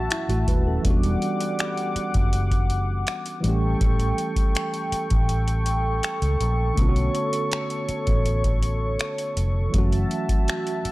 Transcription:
Already playing: A3 F#4 E5 A5
0.11 E4, finger snap, closed hi-hat
0.29 A1 A3 F#4, closed hi-hat
0.47 D#1 B4, kick, closed hi-hat
0.67 C#4 A4
0.81 E1 E3 G3 F#5 D6, kick, closed hi-hat
0.86 B3 D4
0.90 F#4
1.03 closed hi-hat
1.22 closed hi-hat
1.41 closed hi-hat
1.59 finger snap, closed hi-hat
1.77 closed hi-hat
1.96 muted fingered electric bass stroke, closed hi-hat
2.14 F#1, kick, closed hi-hat
2.33 closed hi-hat
2.51 kick, closed hi-hat
2.70 closed hi-hat
3.07 finger snap, closed hi-hat
3.26 closed hi-hat
3.41 A1 E3 G3 A4 G5 C#6, closed hi-hat
3.45 A3 C#4
3.49 G4
3.81 A1, kick, closed hi-hat
4.00 closed hi-hat
4.18 closed hi-hat
4.36 kick, closed hi-hat
4.55 finger snap, closed hi-hat
4.74 closed hi-hat
4.92 muted fingered electric bass stroke, closed hi-hat
5.10 A1, kick, closed hi-hat
5.29 closed hi-hat
5.48 closed hi-hat
5.66 closed hi-hat
6.03 finger snap, closed hi-hat
6.22 C#2, closed hi-hat
6.40 A#1, closed hi-hat
6.74 B1 D3 A3 C#5, kick, closed hi-hat
6.78 B3 C#4
6.82 F4
6.89 F#4
6.96 closed hi-hat
7.15 closed hi-hat
7.33 closed hi-hat
7.52 finger snap, closed hi-hat
7.70 closed hi-hat
7.89 muted fingered electric bass stroke, closed hi-hat
8.07 A1, kick, closed hi-hat
8.26 closed hi-hat
8.44 kick, closed hi-hat
8.63 closed hi-hat
8.99 finger snap, closed hi-hat
9.18 closed hi-hat
9.37 F1, closed hi-hat
9.70 F#1 E3 F#3 F#4 E5 A5, kick, closed hi-hat
9.74 A3 C#4
9.78 F#4
9.92 closed hi-hat
10.11 closed hi-hat
10.29 kick, closed hi-hat
10.48 finger snap, closed hi-hat
10.67 closed hi-hat
10.85 muted fingered electric bass stroke, closed hi-hat

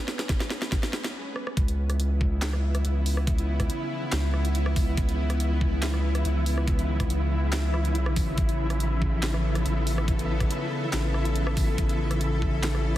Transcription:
Already playing: G#3 B3 C#4 G#4 B4
0.08 snare
0.19 snare, closed hi-hat
0.29 kick, snare, closed hi-hat
0.40 snare
0.50 snare
0.62 snare
0.72 kick, snare, closed hi-hat
0.83 snare
0.93 snare
1.04 snare, closed hi-hat
1.36 cross-stick
1.47 cross-stick
1.57 C#2 C#3 E3 B3 E4, kick, closed hi-hat
1.68 closed hi-hat
1.90 cross-stick, closed hi-hat
2.00 closed hi-hat
2.21 kick
2.42 snare, clap, closed hi-hat
2.53 cross-stick
2.75 cross-stick, closed hi-hat
2.85 C#2, closed hi-hat
3.06 open hi-hat
3.17 cross-stick
3.27 kick, closed hi-hat
3.38 closed hi-hat
3.60 kick, cross-stick, closed hi-hat
3.70 closed hi-hat
4.12 C#2, snare, clap, closed hi-hat
4.34 cross-stick
4.45 closed hi-hat
4.55 closed hi-hat
4.66 cross-stick
4.76 C#2, kick, open hi-hat
4.97 C#2, kick, closed hi-hat
5.09 closed hi-hat
5.30 cross-stick, closed hi-hat
5.40 closed hi-hat
5.61 kick
5.83 snare, clap, closed hi-hat
5.94 cross-stick
6.15 cross-stick, closed hi-hat
6.25 C#2, closed hi-hat
6.46 open hi-hat
6.58 cross-stick
6.68 kick, closed hi-hat
6.79 closed hi-hat
7.00 kick, cross-stick, closed hi-hat
7.10 C#2, closed hi-hat
7.53 snare, clap, closed hi-hat
7.74 cross-stick
7.85 closed hi-hat
7.95 closed hi-hat
8.06 cross-stick
8.11 A#1
8.16 kick, open hi-hat
8.38 A1 B3 A4, kick, closed hi-hat
8.49 closed hi-hat
8.70 cross-stick, closed hi-hat
8.80 closed hi-hat
9.02 kick
9.23 snare, clap, closed hi-hat
9.34 cross-stick
9.55 cross-stick, closed hi-hat
9.66 A1, closed hi-hat
9.87 open hi-hat
9.98 cross-stick
10.08 kick, closed hi-hat
10.19 closed hi-hat
10.40 kick, cross-stick, closed hi-hat
10.51 closed hi-hat
10.93 A1, snare, clap, closed hi-hat
11.14 cross-stick
11.25 closed hi-hat
11.36 closed hi-hat
11.47 cross-stick
11.57 A1, kick, open hi-hat
11.78 A1 C#4, kick, closed hi-hat
11.89 closed hi-hat
12.11 cross-stick, closed hi-hat
12.21 closed hi-hat
12.42 kick
12.63 snare, clap, closed hi-hat
12.75 cross-stick

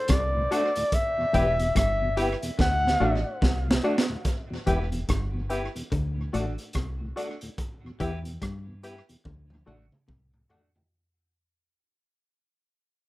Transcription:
Already playing: C5
0.08 C2 C3 D5, kick, cross-stick, closed hi-hat
0.35 D2 A2
0.51 A3 D4 F#4 A4 D5 F#5, closed hi-hat
0.76 D2 A2, closed hi-hat
0.92 E5, kick, closed hi-hat
1.18 E2 B2
1.33 E1 E2 B3 E4 G4 B4 E5 G5, kick, closed hi-hat
1.59 E2 B2, closed hi-hat
1.75 G1 G2 E5, kick, cross-stick, closed hi-hat
2.01 E2 B2
2.17 B3 E4 G4 B4 E5 G5, closed hi-hat
2.43 E2 B2, closed hi-hat
2.59 D2 D3 F#5, kick, snare
2.85 D2 A2, snare
3.00 A1 A2 A3 D4 F#4 A4 D5 F#5
3.42 C2 C3, kick, snare
3.68 D2 A2, snare
3.83 A3 D4 F#4 A4 D5 F#5
3.98 snare
4.10 D2 A2
4.25 kick, closed hi-hat
4.50 E2 B2
4.66 E1 E2 B3 E4 G4 B4 E5 G5, kick, closed hi-hat
4.92 E2 B2, closed hi-hat
5.09 G1 G2, kick, cross-stick, closed hi-hat
5.34 E2 B2
5.49 B3 E4 G4 B4 E5 G5, closed hi-hat
5.75 E2 B2, closed hi-hat
5.92 D2 D3, kick, closed hi-hat
6.17 D2 A2
6.33 A1 A2 A3 D4 F#4 A4 D5 F#5, closed hi-hat
6.58 closed hi-hat
6.73 C2 C3, kick, cross-stick, closed hi-hat
7.01 D2 A2
7.16 A3 D4 F#4 A4 D5 F#5, closed hi-hat
7.41 D2 A2, closed hi-hat
7.58 kick, closed hi-hat
7.84 E2 B2
8.00 E2 E3 B3 E4 G4 B4 E5 G5, kick, closed hi-hat
8.25 E2 B2, closed hi-hat
8.42 G2 G3, kick, cross-stick, closed hi-hat
8.68 E2 B2
8.83 B3 E4 G4 B4 E5 G5, closed hi-hat
9.09 E2 B2, closed hi-hat
9.25 D2 D3, kick, high tom
9.50 D2 A2, high tom
9.66 A1 A2 A3 D4 F#4 A4 D5 F#5, mid tom
9.92 mid tom
10.08 C2 C3, kick, mid tom
10.34 D2 A2, mid tom
10.49 A3 D4 F#4 A4 D5 F#5, floor tom
10.76 D2 A2, floor tom

